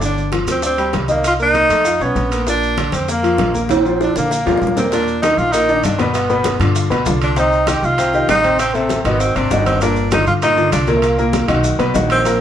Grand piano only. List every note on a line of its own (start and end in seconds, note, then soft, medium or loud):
0.01 0.27 D3 medium
0.01 0.27 D4 medium
0.32 0.57 F3 medium
0.32 0.58 F4 soft
0.62 0.75 D4 medium
0.62 0.76 D5 medium
0.78 1.04 G3 medium
0.78 1.04 G4 medium
1.08 1.34 D#4 medium
1.08 1.34 D#5 medium
1.39 1.65 A#3 medium
1.39 1.65 A#4 medium
1.70 1.83 A3 medium
1.70 1.83 A4 medium
1.86 1.99 F4 medium
1.86 1.99 F5 medium
2.01 2.26 C#4 medium
2.01 2.27 C#5 medium
2.32 2.45 A#3 medium
2.32 2.45 A#4 medium
2.47 2.72 A#2 medium
2.47 2.72 A#3 medium
2.78 3.03 D3 medium
2.78 3.03 D4 medium
3.09 3.21 A#3 medium
3.09 3.21 A#4 medium
3.23 3.48 F3 medium
3.23 3.49 F4 medium
3.54 3.79 A#3 medium
3.54 3.80 A#4 medium
3.85 4.10 F3 medium
3.85 4.10 F4 medium
4.16 4.29 D3 medium
4.16 4.29 D4 medium
4.30 4.43 A#3 medium
4.30 4.44 A#4 medium
4.46 4.71 F3 medium
4.46 4.71 F4 medium
4.77 4.90 A#3 medium
4.77 4.90 A#4 medium
4.92 5.17 A#2 medium
4.92 5.17 A#3 medium
4.92 5.17 A#4 medium
5.24 5.49 D#3 medium
5.24 5.49 D4 medium
5.24 5.49 D#4 medium
5.54 5.66 A#2 medium
5.54 5.66 A#3 medium
5.54 5.67 A#4 medium
5.69 5.94 D#3 medium
5.69 5.94 D4 medium
5.69 5.94 D#4 medium
5.99 6.24 B2 medium
5.99 6.24 B3 medium
5.99 6.25 B4 medium
6.30 6.55 B2 medium
6.30 6.55 B3 medium
6.30 6.55 B4 medium
6.60 6.85 D3 medium
6.60 6.85 D4 medium
6.60 6.86 F4 medium
6.90 7.03 B2 medium
6.90 7.03 B3 medium
6.90 7.04 B4 medium
7.06 7.31 D3 medium
7.06 7.31 D4 medium
7.06 7.32 F4 medium
7.37 7.62 C3 medium
7.37 7.62 C4 medium
7.37 7.62 C5 medium
7.68 7.93 D#3 medium
7.68 7.93 D#4 medium
7.68 7.93 G4 medium
7.98 8.11 C3 medium
7.98 8.11 C4 medium
7.98 8.11 C5 medium
8.14 8.39 D#3 medium
8.14 8.39 D#4 medium
8.14 8.39 G4 medium
8.44 8.69 C3 medium
8.44 8.69 C4 medium
8.44 8.69 C5 medium
8.75 9.00 C3 medium
8.75 9.00 C4 medium
8.75 9.00 C5 medium
9.05 9.30 D#3 medium
9.05 9.30 D#4 medium
9.05 9.31 F#4 medium
9.36 9.48 C3 medium
9.36 9.48 C4 medium
9.36 9.48 C5 medium
9.51 9.76 D#3 medium
9.51 9.77 D#4 medium
9.51 9.77 F#4 medium
9.82 10.07 A#2 medium
9.82 10.07 A#3 medium
9.82 10.07 A#4 medium
10.12 10.37 D3 medium
10.12 10.37 D4 medium
10.12 10.37 F4 medium
10.43 10.55 A#2 medium
10.43 10.55 A#3 medium
10.43 10.55 A#4 medium
10.57 10.82 D3 medium
10.57 10.83 D4 medium
10.57 10.83 F4 medium
10.88 11.13 A#2 medium
10.88 11.13 A#3 medium
10.88 11.13 A#4 medium
11.18 11.43 A#2 medium
11.18 11.44 A#3 medium
11.18 11.44 A#4 medium
11.48 11.73 D#3 medium
11.48 11.74 D#4 medium
11.48 11.74 F#4 medium
11.79 11.92 B2 medium
11.79 11.92 B3 medium
11.79 11.92 B4 medium
11.94 12.19 D#3 medium
11.94 12.20 D#4 medium
11.94 12.20 F#4 medium
12.25 12.41 A#2 medium
12.25 12.41 A#3 medium
12.25 12.41 A#4 medium